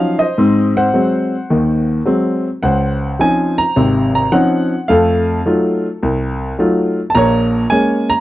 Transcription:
0.00 0.21 F3 soft
0.00 0.21 F#3 soft
0.00 0.21 C#4 soft
0.00 0.22 D#4 medium
0.00 0.17 F5 medium
0.19 0.76 C5 soft
0.19 0.72 D#5 medium
0.38 0.87 G#2 medium
0.38 0.87 C4 medium
0.77 1.85 C5 medium
0.77 1.85 F#5 medium
0.94 1.34 F#3 soft
0.94 1.34 G#3 soft
0.94 1.34 C4 medium
1.50 1.99 D#2 medium
1.50 1.99 D#3 medium
2.05 2.46 F#3 soft
2.05 2.46 G#3 soft
2.05 2.47 C4 medium
2.63 3.12 C#2 medium
2.63 3.73 C5 medium
2.63 3.15 F#5 medium
3.19 3.60 F3 soft
3.19 3.60 C4 soft
3.19 3.60 C#4 soft
3.19 3.60 D#4 medium
3.19 3.60 G#5 medium
3.58 4.10 A#5 medium
3.76 4.25 G#1 medium
3.76 4.25 C3 medium
4.15 4.33 A#5 medium
4.32 4.72 F3 soft
4.32 4.72 C4 soft
4.32 4.72 C#4 soft
4.32 4.73 D#4 medium
4.32 4.90 F#5 medium
4.88 5.38 F2 medium
4.88 5.38 A3 medium
4.88 5.98 A4 medium
4.88 5.41 F5 medium
5.46 5.85 F#3 soft
5.46 5.86 A3 soft
5.46 5.86 D#4 soft
5.46 5.86 F4 medium
6.03 6.51 C2 medium
6.59 6.98 F#3 medium
6.59 6.98 A3 soft
6.59 6.99 D#4 soft
6.59 6.99 F4 medium
7.10 7.14 A5 medium
7.15 7.63 A#1 medium
7.15 7.63 A#2 medium
7.15 8.20 C#5 medium
7.15 7.72 A#5 medium
7.70 8.11 G#3 medium
7.70 8.11 A#3 soft
7.70 8.11 C#4 medium
7.70 8.09 G#5 medium
8.10 8.20 A#5 loud

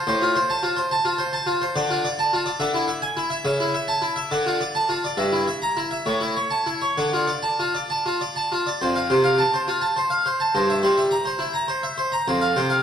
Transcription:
0.07 0.35 A2 medium
0.07 0.23 C5 medium
0.22 0.37 F4 medium
0.36 0.51 C5 medium
0.50 0.65 A5 medium
0.63 0.79 F4 medium
0.77 0.92 C5 medium
0.91 1.07 A5 medium
1.05 1.21 F4 medium
1.18 1.34 C5 medium
1.33 1.49 A5 medium
1.46 1.63 F4 medium
1.61 1.77 C5 medium
1.76 2.04 D3 medium
1.76 1.92 D5 medium
1.90 2.06 F4 medium
2.05 2.20 D5 medium
2.19 2.34 A5 medium
2.33 2.48 F4 medium
2.46 2.61 D5 medium
2.60 2.88 D3 medium
2.60 2.76 E5 medium
2.74 2.90 E4 medium
2.88 3.04 E5 medium
3.02 3.18 G#5 medium
3.17 3.33 E4 medium
3.30 3.44 E5 medium
3.45 3.74 C#3 medium
3.45 3.61 E5 medium
3.60 3.76 E4 medium
3.74 3.90 E5 medium
3.88 4.04 A5 medium
4.02 4.18 E4 medium
4.16 4.32 E5 medium
4.31 4.60 D3 medium
4.31 4.47 D5 medium
4.46 4.62 F4 medium
4.61 4.76 D5 medium
4.75 4.90 A5 medium
4.89 5.04 F4 medium
5.04 5.19 D5 medium
5.17 5.46 G2 medium
5.17 5.33 E5 medium
5.32 5.48 E4 medium
5.48 5.63 E5 medium
5.62 5.78 A#5 medium
5.77 5.92 E4 medium
5.91 6.06 E5 medium
6.06 6.35 A2 medium
6.06 6.22 C#5 medium
6.21 6.37 E4 medium
6.36 6.52 C#5 soft
6.50 6.67 A5 medium
6.67 6.83 E4 medium
6.82 6.97 C#5 soft
6.97 7.27 D3 medium
6.97 7.14 D5 medium
7.13 7.29 F4 soft
7.27 7.44 D5 soft
7.43 7.59 A5 medium
7.59 7.75 F4 soft
7.75 7.90 D5 soft
7.90 8.06 A5 medium
8.06 8.21 F4 soft
8.21 8.37 D5 soft
8.36 8.52 A5 soft
8.52 8.67 F4 soft
8.67 8.81 D5 soft
8.81 9.10 F2 medium
8.81 8.96 C5 soft
8.96 9.11 F5 soft
9.10 9.40 C3 soft
9.10 9.25 C5 soft
9.24 9.39 F5 soft
9.38 9.54 A5 medium
9.54 9.69 C5 soft
9.68 9.83 F4 soft
9.81 9.97 A5 soft
9.96 10.12 C5 soft
10.10 10.26 F5 soft
10.26 10.41 C5 soft
10.40 10.55 A5 soft
10.55 10.83 G2 medium
10.55 10.70 C5 soft
10.70 10.85 E5 soft
10.83 11.14 G3 soft
10.83 10.99 C5 soft
10.98 11.13 E5 soft
11.11 11.27 A#5 medium
11.25 11.41 C5 soft
11.39 11.55 E4 soft
11.53 11.69 A#5 soft
11.68 11.84 C5 soft
11.83 11.99 E5 medium
11.98 12.13 C5 soft
12.12 12.27 A#5 soft
12.28 12.56 F2 medium
12.28 12.43 C5 medium
12.42 12.57 F5 medium
12.56 12.83 C3 soft
12.56 12.72 C5 soft
12.70 12.83 F5 medium

